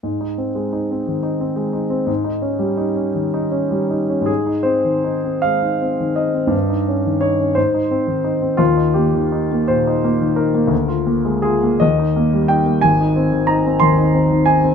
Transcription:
\new Staff \with { instrumentName = "Grand piano" } { \time 6/8 \key aes \major \tempo 4. = 58 << { r2. | r2. | aes'8 c''4 f''4 ees''8~ | ees''4 des''8 c''4. |
f'8 g'4 c''4 bes'8~ | bes'4 aes'8 ees''4 g''8 | aes''4 bes''8 c'''4 aes''8 | } \\ { aes,16 ees'16 c'16 aes16 ees'16 c'16 ees16 ees'16 c'16 aes16 ees'16 c'16 | aes,16 ees'16 des'16 g16 ees'16 des'16 ees16 ees'16 des'16 g16 ees'16 des'16 | aes,16 ees'16 c'16 ees16 ees'16 c'16 aes16 ees'16 c'16 ees16 ees'16 c'16 | g,16 ees'16 des'16 ees16 ees'16 des'16 aes,16 ees'16 c'16 ees16 ees'16 c'16 |
ees,16 ees'16 bes16 ees16 ees'16 bes16 bes,16 ees'16 bes16 ees16 ees'16 bes16 | d,16 f'16 bes16 aes16 f'16 bes16 ees,16 ees'16 bes16 g16 ees'16 bes16 | aes,,16 ees'16 c'16 ees16 ees'16 c'16 ees,16 ees'16 c'16 ees16 ees'16 c'16 | } >> }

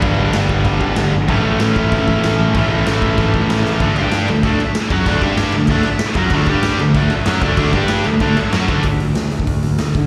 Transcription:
<<
  \new Staff \with { instrumentName = "Distorted electric guitar" } { \time 4/4 \key a \mixolydian \tempo 4 = 191 <g, d g>2.~ <g, d g>8 r8 | <a, e a>1 | <a, e a>1 | \key d \major <d a d'>8 <g d' g'>4 <d a>8 <d a d'>8 r4 <fis cis' fis'>8 |
<d a d'>8 <g d' g'>4 <d a>8 <d a d'>8 r4 <fis cis' fis'>8 | <d a d'>8 <g d' g'>4 <d a>8 <d a d'>8 r8 <fis cis' fis'>8 <d a d'>8 | <d a d'>8 <g d' g'>4 <d a>8 <d a d'>8 r8 <fis cis' fis'>8 <d a d'>8 | r1 | }
  \new Staff \with { instrumentName = "Distorted electric guitar" } { \time 4/4 \key a \mixolydian <g, d g b d'>2.~ <g, d g b d'>8 r8 | <a, e a cis' e'>1 | <a, e a cis' e'>1 | \key d \major <d a d'>8 <g d' g'>4 <d a>8 <d a d'>8 r4 <fis cis' fis'>8 |
<d a d'>8 <g d' g'>4 <d a>8 <d a d'>8 r4 <fis cis' fis'>8 | <d a d'>8 <g d' g'>4 <d a>8 <d a d'>8 r8 <fis cis' fis'>8 <d a d'>8 | <d a d'>8 <g d' g'>4 <d a>8 <d a d'>8 r8 <fis cis' fis'>8 <d a d'>8 | r1 | }
  \new Staff \with { instrumentName = "Distorted electric guitar" } { \time 4/4 \key a \mixolydian <g, d g>2.~ <g, d g>8 r8 | <a, e a>1 | <a, e a>1 | \key d \major <d a d'>8 <g d' g'>4 <d a>8 <d a d'>8 r4 <fis cis' fis'>8 |
<d a d'>8 <g d' g'>4 <d a>8 <d a d'>8 r4 <fis cis' fis'>8 | <d a d'>8 <g d' g'>4 <d a>8 <d a d'>8 r8 <fis cis' fis'>8 <d a d'>8 | <d a d'>8 <g d' g'>4 <d a>8 <d a d'>8 r8 <fis cis' fis'>8 <d a d'>8 | r1 | }
  \new Staff \with { instrumentName = "Picked electric bass" } { \clef bass \time 4/4 \key a \mixolydian g,,8 g,,8 g,,4 g,,8 g,,8 g,,8 g,,8 | a,,8 a,,8 a,,4 a,,8 a,,8 a,,8 a,,8 | a,,8 a,,8 a,,4 a,,8 a,,8 a,,8 a,,8 | \key d \major d,8 g,4 d,8 d,8 r4 fis,8 |
d,8 g,4 d,8 d,8 r4 fis,8 | d,8 g,4 d,8 d,8 r8 fis,8 d,8 | d,8 g,4 d,8 d,8 r8 fis,8 d,8 | d,8 d,8 d,8 d,8 d,8 d,8 d,8 d8 | }
  \new DrumStaff \with { instrumentName = "Drums" } \drummode { \time 4/4 <cymc bd>4 <cymc sn>8 bd8 <cymc bd>8 bd8 <cymc sn>4 | <cymc bd>4 <cymc sn>8 bd8 <cymc bd>8 bd8 <cymc sn>4 | <cymc bd>4 <cymc sn>8 bd8 <cymc bd>8 bd8 <cymc sn>8 sn8 | <cymc bd>8 cymc8 <cymc sn>8 cymc8 <cymc bd>8 cymc8 <cymc sn>8 <cymc bd>8 |
<cymc bd>8 <cymc bd>8 <cymc sn>8 cymc8 <cymc bd>8 cymc8 <cymc sn>8 <cymc bd>8 | <cymc bd>8 <cymc bd>8 <cymc sn>8 cymc8 <cymc bd>8 cymc8 <cymc sn>8 <cymc bd>8 | <cymc bd>8 <cymc bd>8 <cymc sn>8 cymc8 <cymc bd>8 cymc8 <cymc sn>8 <cymc bd>8 | <hho bd>8 hho8 <hho sn>8 hho16 bd16 <hho bd>8 hho8 <hho sn>8 <hho bd>8 | }
>>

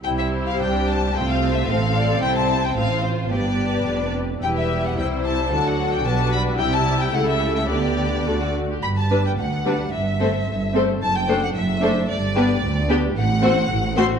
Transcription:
<<
  \new Staff \with { instrumentName = "Violin section" } { \time 2/4 \key c \major \tempo 4 = 110 g''16 e''8 f''16 g''8 a''8 | g''16 f''8 e''16 f''4 | g''16 a''8 g''16 f''8 c''8 | d''4. r8 |
\key g \major g''16 e''8 fis''16 g''8 a''8 | a''16 fis''8 g''16 a''8 b''8 | g''16 a''8 g''16 fis''16 e''8 e''16 | d''4. r8 |
b''16 a''8 g''16 fis''4 | e''4. r8 | a''16 g''8 fis''16 e''4 | d''4. r8 |
fis''4. c'''8 | }
  \new Staff \with { instrumentName = "Violin section" } { \time 2/4 \key c \major << { c''2 | c''4 c''8 d''8 | c''4 c''4 | b'4. r8 |
\key g \major b'4 c''4 | a'4 b'4 | g'2 | g'4 a'16 fis'8 g'16 |
r8 b'16 r8. b'16 r16 | r8 c''16 r8. c''16 r16 | r8 c''16 r8. c''16 r16 | r8 b'16 r8. b'16 r16 |
r8 c''16 r8. c''16 r16 | } \\ { g'2 | f'4 a'4 | e'4 f'4 | g'4. r8 |
g'4 e'4 | fis'4 fis'4 | e'4 a'4 | g'4 r4 |
r8 b'16 r8. b'16 r16 | r8 a'16 r8. a'16 r16 | r8 a'16 r8. a'16 r16 | r8 g'16 r8. g'16 r16 |
r8 fis'16 r8. fis'16 r16 | } >> }
  \new Staff \with { instrumentName = "Viola section" } { \time 2/4 \key c \major << { e'4 d'4 | c'4 c'4~ | c'2 | d'4. r8 |
\key g \major e'4 e'4 | d'4 d'4 | e'4 e'4 | d'4 fis'8 r8 |
r8 d'16 r8. d'16 r16 | r8 c'16 r8. c'16 r16 | r8 d'16 r8. d'16 r16 | r8 d'16 r8. d'16 r16 |
r8 c'16 r8. c'16 r16 | } \\ { g2 | a4 c'4~ | c'4 c'4 | b4. r8 |
g2 | fis4 g4 | g4 a4 | b4 a8 r8 |
r8 g16 r8. g16 r16 | r8 a16 r8. a16 r16 | r8 a16 r8. a16 r16 | r8 b16 r8. b16 r16 |
r8 a16 r8. a16 r16 | } >> }
  \new Staff \with { instrumentName = "Cello section" } { \clef bass \time 2/4 \key c \major c4 c,4 | c4 a,4 | c4 a,4 | g,4 f,4 |
\key g \major e,4 c4 | d4 b,4 | c4 cis4 | d4 d4 |
g,4 d,4 | g,4 g,4 | fis,4 fis,4 | g,4 d,4 |
a,4 a,4 | }
  \new Staff \with { instrumentName = "Double bass section" } { \clef bass \time 2/4 \key c \major c,4 c,4 | c,4 a,,4 | c,4 a,,4 | g,,4 f,,4 |
\key g \major e,,4 c,4 | d,4 b,,4 | c,4 cis,4 | d,4 d,4 |
g,,4 d,4 | g,,4 g,,4 | fis,,4 fis,,4 | g,,4 d,4 |
a,,4 a,,4 | }
>>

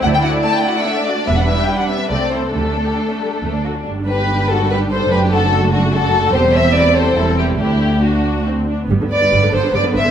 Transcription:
<<
  \new Staff \with { instrumentName = "Violin section" } { \time 3/4 \key g \major \tempo 4 = 144 fis''16 g''16 fis''8 a''16 g''16 fis''8 e''8 d''8 | e''16 fis''16 e''8 g''16 fis''16 e''8 d''8 c''8 | a'2~ a'8 r8 | r8 g'4 fis'8 g'8 a'8 |
g'8 fis'4 d'8 fis'4 | g'8 c''8 b'8 a'8 e'8 e'8 | e'4 d'4 r4 | r8 b'4 a'8 b'8 c''8 | }
  \new Staff \with { instrumentName = "Violin section" } { \time 3/4 \key g \major << { d''2. | b'2 a'4~ | a'2~ a'8 r8 | r8 b'4 a'8 b'8 c''8 |
b'8 a'4 fis'8 a'4 | c''8 e''8 d''8 c''8 a'8 g'8 | g'4 fis'4 r4 | r8 d''4 c''8 d''8 e''8 | } \\ { a16 d'16 fis'16 d'16 a16 d'16 fis'16 d'16 a16 d'16 fis'16 d'16 | b16 d'16 e'16 g'16 e'16 d'16 b16 d'16 a16 c'16 e'16 c'16 | g16 a16 d'16 g'16 d'16 a16 g16 a16 a16 d'16 fis'16 d'16 | r2. |
r2. | r2. | r2. | r2. | } >> }
  \new Staff \with { instrumentName = "Viola section" } { \time 3/4 \key g \major << { e'2 d'4~ | d'2 c'4 | d'2~ d'8 r8 | d'2.~ |
d'2. | c'2 c'4 | d'4 d'4 c'8 d'8 | b2. | } \\ { a2. | g2 a4~ | a2~ a8 r8 | g2. |
a2. | g2 g4 | a4 r2 | g16 d16 r16 d16 g16 d16 d16 d16 g16 d16 d16 d16 | } >> }
  \new Staff \with { instrumentName = "Cello section" } { \clef bass \time 3/4 \key g \major d,8. r2 r16 | e,8. r4 r16 c,8. r16 | d,8. r4 r16 d,8. r16 | g,2. |
fis,2. | e,2 e,4 | d,2~ d,8 r8 | g,16 g,16 r16 g,16 g,16 g,16 g,16 g,16 g,16 g,16 g,16 g,16 | }
  \new Staff \with { instrumentName = "Double bass section" } { \clef bass \time 3/4 \key g \major d,4 r2 | e,,4 r4 c,4 | d,4 r4 d,4 | g,,2. |
fis,,2. | e,,2 e,,4 | d,2~ d,8 r8 | g,,16 r8. g,,16 r16 g,,16 r16 g,,16 r16 g,,16 r16 | }
>>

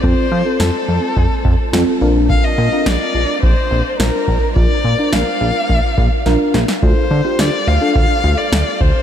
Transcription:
<<
  \new Staff \with { instrumentName = "Violin" } { \time 4/4 \key bes \major \tempo 4 = 106 c''4 a'2~ a'8 r8 | f''16 ees''8. d''4 c''4 bes'4 | d''4 f''2~ f''8 r8 | c''4 d''8 f''8 f''8. d''8. c''8 | }
  \new Staff \with { instrumentName = "FM electric piano" } { \time 4/4 \key bes \major <c' f' a'>8 r16 <c' f' a'>4 r4 r16 <c' f' a'>8 <d' f' bes'>8~ | <d' f' bes'>8 r16 <d' f' bes'>4 r4 r16 <d' f' bes'>8 r8 | <d' f' bes'>8 r16 <d' f' bes'>4 r4 r16 <d' f' bes'>8 r8 | <d' f' a'>8 r16 <d' f' g'>8 r8 <d' f' a'>4 r4 r16 | }
  \new Staff \with { instrumentName = "Analog synth bass" } { \clef bass \time 4/4 \key bes \major f,16 r16 f16 r16 f,16 r16 f,16 r16 f,16 r16 f,16 r16 f,16 r16 bes,,8~ | bes,,16 r16 bes,16 r16 bes,,16 r16 bes,,16 r16 bes,,16 r16 bes,,16 r16 bes,,16 r16 bes,,16 r16 | bes,,16 r16 bes,16 r16 bes,,16 r16 bes,,16 r16 bes,,16 r16 bes,,16 r16 bes,,16 r16 bes,,16 r16 | d,16 r16 d16 r16 d,16 r16 d,16 r16 d,16 r16 d,16 r16 d,16 r16 d,16 r16 | }
  \new DrumStaff \with { instrumentName = "Drums" } \drummode { \time 4/4 bd4 sn4 bd8 bd8 sn4 | bd4 sn4 bd4 sn8 bd8 | bd4 sn4 bd8 bd8 sn8 sn16 sn16 | bd4 sn4 bd4 sn8 bd8 | }
>>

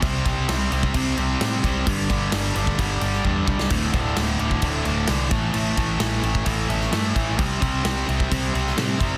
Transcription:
<<
  \new Staff \with { instrumentName = "Distorted electric guitar" } { \clef bass \time 4/4 \key c \lydian \tempo 4 = 130 <c g c'>8 <c g c'>8 <c g c'>8 <c g c'>8 <c g c'>8 <c g c'>8 <c g c'>8 <c g c'>8 | <g, d g>8 <g, d g>8 <g, d g>8 <g, d g>8 <g, d g>8 <g, d g>8 <g, d g>8 <g, d g>8 | <d, a, d>8 <d, a, d>8 <d, a, d>8 <d, a, d>8 <d, a, d>8 <d, a, d>8 <d, a, d>8 <a, e a>8 | <a, e a>8 <a, e a>8 <a, e a>8 <a, e a>8 <a, e a>8 <a, e a>8 <a, e a>8 <a, e a>8 |
<c g c'>8 <c g c'>8 <c g c'>8 <c g c'>8 <c g c'>8 <c g c'>8 <c g c'>8 <c g c'>8 | }
  \new Staff \with { instrumentName = "Picked electric bass" } { \clef bass \time 4/4 \key c \lydian c,8 c,8 c,8 c,8 c,8 c,8 a,8 c,8 | g,,8 g,,8 g,,8 g,,8 g,,8 g,,8 e,8 c,8 | d,,8 d,,8 d,,8 d,,8 d,,8 d,,8 c,8 a,,8 | a,,8 a,,8 a,,8 a,,8 a,,8 a,,8 g,8 a,,8 |
c,8 c,8 c,8 c,8 c,8 c,8 a,8 fis,,8 | }
  \new DrumStaff \with { instrumentName = "Drums" } \drummode { \time 4/4 <cymc bd>8 <cymc bd>8 <cymc sn>8 cymc16 bd16 <cymc bd>8 cymc8 <cymc sn>8 <cymc bd>8 | <cymc bd>8 <cymc bd>8 <cymc sn>8 cymc16 bd16 <cymc bd>8 cymc16 sn16 bd8 bd16 sn16 | <cymc bd>8 <cymc bd>8 <cymc sn>8 cymc16 bd16 <cymc bd>8 cymc8 <cymc sn>8 <cymc bd>8 | cymc8 <cymc bd>8 <cymc sn>8 cymc16 bd16 <cymc bd>8 cymc16 sn16 <cymc sn>8 <cymc bd>8 |
<cymc bd>8 <cymc bd>8 <cymc sn>8 cymc16 bd16 <cymc bd>8 cymc16 sn16 <cymc sn>8 <cymc bd>8 | }
>>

